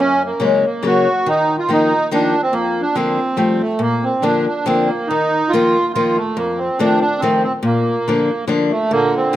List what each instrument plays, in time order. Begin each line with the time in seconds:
0.00 steel-string acoustic guitar F#2, accordion C#4
0.26 accordion A#3
0.40 steel-string acoustic guitar C#3 F#3 A#3 C#4, accordion G#3
0.66 accordion A#3
0.83 steel-string acoustic guitar C#3 F#3 A#3 C#4, accordion F#4
1.26 steel-string acoustic guitar D#3, accordion D#4
1.58 accordion F4
1.69 steel-string acoustic guitar D#3 F3 A#3 D#4
1.73 accordion D#4
2.11 steel-string acoustic guitar D#3 F3 A#3 D#4, accordion D4
2.43 accordion C4
2.52 steel-string acoustic guitar F2, accordion A#3
2.82 accordion D4
2.94 steel-string acoustic guitar D3 F3 A#3 D4, accordion C4
3.37 steel-string acoustic guitar F3 G3 A3 C4
3.61 accordion A3
3.79 steel-string acoustic guitar A#2, accordion A#3
4.04 accordion C4
4.22 steel-string acoustic guitar D3 F3 A#3 D4, accordion D4
4.47 accordion D4
4.66 steel-string acoustic guitar D3 F3 A#3 D4, accordion C4
4.86 accordion A#3
5.07 steel-string acoustic guitar D#3, accordion D#4
5.49 accordion F4
5.53 steel-string acoustic guitar D#3 F3 A#3 D#4
5.94 steel-string acoustic guitar D#3 F3 A#3 D#4, accordion F4
6.16 accordion A3
6.36 steel-string acoustic guitar F2, accordion A#3
6.58 accordion C4
6.79 steel-string acoustic guitar D#3 F3 A3 C4, accordion D4
7.01 accordion D4
7.19 steel-string acoustic guitar D#3, accordion C4
7.23 steel-string acoustic guitar F3 A3 C4
7.44 accordion C4
7.63 steel-string acoustic guitar A#2, accordion A#3
8.08 steel-string acoustic guitar D3 F3 A#3 D4
8.48 steel-string acoustic guitar D3 F3 A#3 D4
8.71 accordion A3
8.91 steel-string acoustic guitar A#2, accordion D3 A#3
9.17 accordion C4
9.33 steel-string acoustic guitar F3